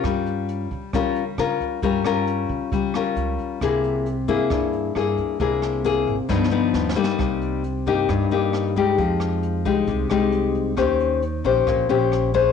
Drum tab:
HH |x--x--x--x--x--x--x--x--|x--x--x--x--x--x--x--x--|x--x--x--x--x--x--x--x--|x--x--x--x--------------|
SD |r-----------r-----r-----|---r-----------r--------|r-----------r-----r-----|---r--------o-o---o-o-o-|
BD |o--------o--o--------o--|o--------o--o--------o--|o--------o--o--------o--|o--------o--o-----------|

HH |x--x--x--x--x--x--x--x--|x--x--x--x--x--x--x--x--|x--x--x--x--x--x--x--x--|
SD |r-----------r-----r-----|---r-----------r--------|r-----------r-----r-----|
BD |o--------o--o--------o--|o--------o--o--------o--|o--------o--o--------o--|